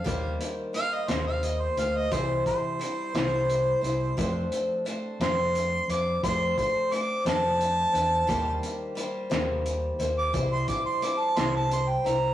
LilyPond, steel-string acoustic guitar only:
\new Staff \with { instrumentName = "Steel-string acoustic guitar" } { \time 6/8 \key f \major \tempo 4. = 58 <ees g bes g' c''>4 <g bes g' c''>8 <ees g bes g' c''>4 <bes g' c''>8 | <c e g c' e' c''>4 <g c' e' c''>8 <c e g c' e' c''>4 <g c' e' c''>8 | <f a c' d' c''>4 <a c' d' c''>8 <f a c' d' c''>4 <c' d' c''>8 | <f a c' d' c''>4 <a c' d' c''>8 <f a c' d' c''>4 <c' d' c''>8 |
<ees g bes g' c''>4 <g bes g' c''>8 <ees g bes g' c''>4 <bes g' c''>8 | <c g c' e' c''>4 <g c' e' c''>8 <c g c' e' c''>4 <c' e' c''>8 | }